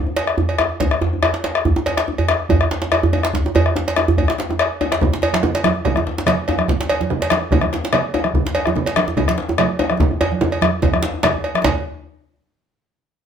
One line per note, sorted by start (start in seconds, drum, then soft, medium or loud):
0.07 djembe tone medium
0.16 cowbell medium
0.16 djembe slap medium
0.27 bombo rim medium
0.27 djembe slap soft
0.38 djembe slap soft
0.38 djembe tone medium
0.38 djembe bass medium
0.49 bombo rim soft
0.49 cowbell soft
0.58 bombo rim loud
0.58 djembe slap medium
0.58 djembe tone medium
0.70 bombo rim soft
0.80 bombo rim soft
0.80 bombo low loud
0.80 cowbell soft
0.80 djembe slap medium
0.80 djembe slap soft
0.80 djembe tone medium
0.80 djembe bass medium
0.91 bombo rim medium
1.01 djembe slap medium
1.01 djembe bass medium
1.13 djembe slap soft
1.13 djembe tone medium
1.23 bombo rim loud
1.23 cowbell medium
1.23 djembe tone loud
1.34 djembe slap medium
1.44 cowbell soft
1.44 djembe slap medium
1.55 bombo rim loud
1.65 bombo low loud
1.65 djembe bass medium
1.76 djembe tone loud
1.76 djembe tone medium
1.86 cowbell medium
1.86 djembe slap medium
1.97 bombo rim medium
1.97 djembe slap medium
1.97 djembe slap soft
2.08 djembe slap soft
2.08 djembe tone medium
2.18 cowbell medium
2.18 djembe bass medium
2.29 bombo rim loud
2.29 djembe slap medium
2.40 bombo rim soft
2.49 bombo rim soft
2.49 bombo low loud
2.49 cowbell medium
2.49 djembe slap soft
2.49 djembe tone medium
2.49 djembe bass loud
2.49 djembe bass medium
2.61 bombo rim medium
2.71 djembe slap medium
2.82 djembe slap medium
2.82 djembe slap soft
2.82 djembe tone medium
2.92 bombo rim loud
2.92 cowbell medium
2.92 djembe tone medium
3.03 djembe bass loud
3.13 cowbell medium
3.13 djembe slap medium
3.13 djembe tone medium
3.23 bombo rim medium
3.23 djembe slap medium
3.34 bombo rim soft
3.34 bombo low loud
3.34 djembe slap medium
3.34 djembe bass medium
3.45 djembe slap soft
3.45 djembe tone medium
3.55 bombo rim soft
3.55 cowbell medium
3.55 djembe slap medium
3.55 djembe bass loud
3.66 bombo rim medium
3.66 djembe slap soft
3.76 djembe slap soft
3.76 djembe slap medium
3.76 djembe tone medium
3.87 cowbell medium
3.87 djembe slap soft
3.87 djembe slap medium
3.96 bombo rim loud
3.96 djembe slap medium
3.96 djembe tone medium
4.08 djembe bass loud
4.17 bombo low loud
4.17 cowbell medium
4.17 djembe slap soft
4.17 djembe tone medium
4.17 djembe bass medium
4.28 bombo rim medium
4.28 djembe slap medium
4.38 djembe slap medium
4.50 bombo rim soft
4.50 djembe slap soft
4.50 djembe tone medium
4.59 bombo rim loud
4.59 cowbell medium
4.59 djembe slap soft
4.71 djembe slap soft
4.81 cowbell medium
4.81 djembe slap medium
4.81 djembe tone medium
4.92 bombo rim medium
4.92 djembe slap loud
4.92 djembe slap soft
5.01 bombo low medium
5.01 high conga soft
5.01 djembe tone medium
5.01 low conga medium
5.01 djembe bass medium
5.12 djembe slap medium
5.12 djembe tone medium
5.22 cowbell medium
5.22 djembe slap medium
5.22 high conga soft
5.22 djembe tone medium
5.33 bombo rim medium
5.33 djembe slap soft
5.33 djembe slap loud
5.33 high conga medium
5.43 djembe slap soft
5.43 djembe tone medium
5.43 low conga medium
5.55 bombo rim soft
5.55 cowbell medium
5.55 djembe slap medium
5.64 bombo rim loud
5.64 djembe slap medium
5.64 high conga medium
5.64 djembe tone medium
5.75 bombo rim soft
5.75 high conga soft
5.85 bombo rim soft
5.85 bombo low loud
5.85 cowbell medium
5.85 djembe slap soft
5.85 djembe tone medium
5.85 low conga medium
5.85 djembe bass medium
5.96 bombo rim medium
5.96 high conga medium
5.96 djembe tone medium
6.07 djembe slap medium
6.18 djembe slap soft
6.18 djembe slap medium
6.18 djembe tone medium
6.26 bombo rim loud
6.26 cowbell medium
6.26 djembe slap medium
6.26 high conga medium
6.26 low conga medium
6.48 cowbell medium
6.48 djembe slap medium
6.48 djembe tone medium
6.58 bombo rim medium
6.58 high conga medium
6.68 bombo low loud
6.68 djembe slap medium
6.68 high conga soft
6.68 low conga medium
6.68 djembe bass medium
6.80 djembe slap medium
6.80 djembe tone medium
6.89 cowbell medium
6.89 djembe slap medium
6.89 high conga soft
7.01 djembe slap soft
7.01 high conga medium
7.01 djembe tone medium
7.10 djembe slap soft
7.10 djembe tone medium
7.10 low conga medium
7.21 bombo rim soft
7.21 cowbell medium
7.21 djembe slap medium
7.30 bombo rim loud
7.30 djembe slap medium
7.30 high conga medium
7.41 bombo rim soft
7.41 high conga soft
7.51 bombo rim soft
7.51 bombo low loud
7.51 cowbell medium
7.51 djembe slap soft
7.51 djembe tone medium
7.51 low conga medium
7.51 djembe bass medium
7.61 bombo rim medium
7.61 high conga medium
7.73 djembe slap medium
7.84 djembe slap soft
7.84 djembe slap medium
7.84 djembe tone medium
7.93 bombo rim loud
7.93 cowbell medium
7.93 high conga medium
7.93 low conga medium
8.14 cowbell medium
8.14 djembe slap medium
8.14 djembe tone medium
8.24 bombo rim medium
8.24 high conga medium
8.34 bombo low medium
8.34 high conga soft
8.34 low conga medium
8.34 djembe bass medium
8.45 djembe slap medium
8.45 djembe tone medium
8.55 cowbell medium
8.55 djembe slap medium
8.55 high conga soft
8.66 bombo rim medium
8.66 djembe slap soft
8.66 high conga medium
8.66 djembe tone medium
8.76 djembe slap soft
8.76 djembe tone medium
8.76 low conga medium
8.86 bombo rim soft
8.86 cowbell medium
8.86 djembe slap medium
8.96 bombo rim loud
8.96 djembe slap medium
8.96 high conga medium
9.07 bombo rim soft
9.07 high conga soft
9.07 djembe tone medium
9.17 bombo rim soft
9.17 bombo low loud
9.17 cowbell medium
9.17 djembe slap soft
9.17 djembe tone medium
9.17 low conga medium
9.17 djembe bass medium
9.28 bombo rim medium
9.28 djembe slap medium
9.28 high conga medium
9.38 djembe slap medium
9.49 djembe slap soft
9.49 djembe tone medium
9.58 bombo rim loud
9.58 cowbell medium
9.58 high conga medium
9.58 low conga medium
9.79 cowbell medium
9.79 djembe slap medium
9.79 djembe tone medium
9.90 bombo rim medium
9.90 high conga medium
10.00 bombo rim soft
10.00 bombo low loud
10.00 djembe tone loud
10.00 high conga soft
10.00 djembe bass medium
10.00 low conga medium
10.11 bombo rim soft
10.11 djembe tone medium
10.11 high conga soft
10.21 cowbell medium
10.21 djembe slap medium
10.21 djembe tone loud
10.21 high conga soft
10.32 high conga medium
10.41 bombo rim soft
10.41 djembe tone loud
10.41 djembe tone medium
10.41 low conga medium
10.52 cowbell medium
10.61 bombo rim loud
10.61 high conga medium
10.61 djembe tone loud
10.73 high conga soft
10.82 bombo rim soft
10.82 bombo low loud
10.82 cowbell soft
10.82 djembe tone loud
10.82 djembe tone medium
10.82 low conga medium
10.82 djembe bass medium
10.93 bombo rim medium
10.93 high conga medium
11.03 djembe slap loud
11.03 djembe slap medium
11.14 djembe tone medium
11.23 bombo rim loud
11.23 cowbell medium
11.23 djembe slap loud
11.23 high conga medium
11.23 low conga medium
11.35 djembe bass soft
11.44 cowbell soft
11.44 djembe slap medium
11.55 bombo rim medium
11.55 djembe slap medium
11.55 high conga medium
11.64 bombo low medium
11.64 cowbell medium
11.64 djembe slap loud
11.64 low conga medium
11.64 djembe bass medium